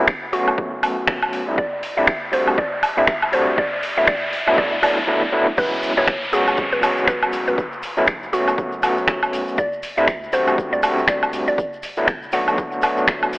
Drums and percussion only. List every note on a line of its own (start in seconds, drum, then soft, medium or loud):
0.08 finger snap loud
0.08 kick loud
0.33 open hi-hat loud
0.48 high woodblock medium
0.58 kick loud
0.83 open hi-hat loud
0.83 high woodblock medium
1.07 finger snap loud
1.07 kick loud
1.22 high woodblock medium
1.33 open hi-hat medium
1.58 kick loud
1.83 open hi-hat loud
2.07 finger snap loud
2.07 kick loud
2.33 open hi-hat loud
2.47 high woodblock medium
2.58 kick loud
2.83 open hi-hat loud
2.83 high woodblock medium
3.07 finger snap loud
3.07 kick loud
3.22 high woodblock medium
3.33 open hi-hat medium
3.58 kick loud
3.83 open hi-hat loud
4.08 finger snap loud
4.08 kick loud
4.33 open hi-hat loud
4.48 high woodblock medium
4.58 kick loud
4.83 open hi-hat loud
4.83 high woodblock medium
5.57 kick loud
5.57 crash loud
5.57 shaker medium
5.73 shaker soft
5.83 open hi-hat loud
5.83 shaker loud
5.97 shaker soft
6.08 finger snap loud
6.08 kick loud
6.08 shaker soft
6.23 shaker soft
6.33 open hi-hat loud
6.33 shaker loud
6.47 high woodblock medium
6.47 shaker soft
6.57 kick loud
6.57 shaker medium
6.72 shaker soft
6.83 open hi-hat loud
6.83 high woodblock medium
6.83 shaker medium
6.97 shaker soft
7.08 finger snap loud
7.08 kick loud
7.08 shaker medium
7.22 high woodblock medium
7.22 shaker soft
7.33 open hi-hat medium
7.33 shaker medium
7.47 shaker soft
7.58 kick loud
7.58 shaker medium
7.72 shaker soft
7.83 open hi-hat loud
7.83 shaker loud
7.97 shaker soft
8.07 finger snap loud
8.07 kick loud
8.07 shaker medium
8.23 shaker soft
8.33 open hi-hat loud
8.33 shaker medium
8.48 high woodblock medium
8.48 shaker soft
8.58 kick loud
8.58 shaker soft
8.72 shaker soft
8.83 open hi-hat loud
8.83 high woodblock medium
8.83 shaker medium
8.98 shaker soft
9.08 finger snap loud
9.08 kick loud
9.08 shaker medium
9.23 high woodblock medium
9.23 shaker soft
9.33 open hi-hat medium
9.33 shaker loud
9.48 shaker soft
9.58 kick loud
9.58 shaker medium
9.73 shaker soft
9.83 open hi-hat loud
9.83 shaker loud
9.98 shaker soft
10.08 finger snap loud
10.08 kick loud
10.08 shaker medium
10.24 shaker soft
10.33 open hi-hat loud
10.33 shaker loud
10.47 high woodblock medium
10.47 shaker soft
10.58 kick loud
10.58 shaker medium
10.73 shaker soft
10.83 open hi-hat loud
10.83 high woodblock medium
10.83 shaker medium
10.98 shaker soft
11.08 finger snap loud
11.08 kick loud
11.08 shaker medium
11.23 high woodblock medium
11.23 shaker soft
11.33 open hi-hat medium
11.33 shaker loud
11.47 shaker soft
11.58 kick loud
11.58 shaker medium
11.73 shaker soft
11.83 open hi-hat loud
11.83 shaker loud
11.97 shaker soft
12.08 finger snap loud
12.08 kick loud
12.08 shaker medium
12.23 shaker soft
12.32 open hi-hat loud
12.32 shaker medium
12.48 high woodblock medium
12.48 shaker soft
12.58 kick loud
12.58 shaker medium
12.72 shaker soft
12.82 open hi-hat loud
12.82 high woodblock medium
12.82 shaker loud
12.97 shaker soft
13.07 finger snap loud
13.07 kick loud
13.07 shaker medium
13.23 high woodblock medium
13.23 shaker soft
13.33 open hi-hat medium
13.33 shaker loud